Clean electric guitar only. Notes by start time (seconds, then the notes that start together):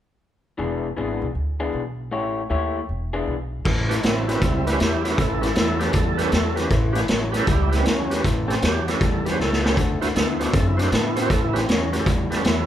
0.58 E3 B3 D4 G#4
0.97 E3 B3 D4 G#4
1.60 E3 B3 D4 G#4
2.11 A3 E4 G4 C#5
2.50 A3 E4 G4 C#5
3.13 E3 B3 D4 G#4
3.65 A2 E3
3.90 A2 E3
4.04 A2 F#3
4.28 A2 F#3
4.42 A2 G3
4.67 A2 G3
4.80 A2 F#3
5.05 A2 F#3
5.17 A2 E3
5.42 A2 E3
5.56 A2 F#3
5.81 A2 F#3
5.94 A2 G3
6.19 A2 G3
6.32 A2 F#3
6.57 A2 F#3
6.71 A2 E3
6.96 A2 E3
7.09 A2 F#3
7.34 A2 F#3
7.47 A2 G3
7.72 A2 G3
7.86 A2 F#3
8.11 A2 F#3
8.24 A2 E3
8.48 A2 E3
8.62 A2 F#3
8.88 A2 F#3
9.01 A2 G3
9.26 A2 G3
9.39 A2 F#3
9.64 A2 F#3
9.77 D3 A3
10.02 D3 A3
10.15 D3 B3
10.40 D3 B3
10.53 D3 C4
10.78 D3 C4
10.91 D3 B3
11.17 D3 B3
11.29 A2 E3
11.55 A2 E3
11.68 A2 F#3
11.92 A2 F#3
12.06 A2 G3
12.30 A2 G3
12.44 A2 F#3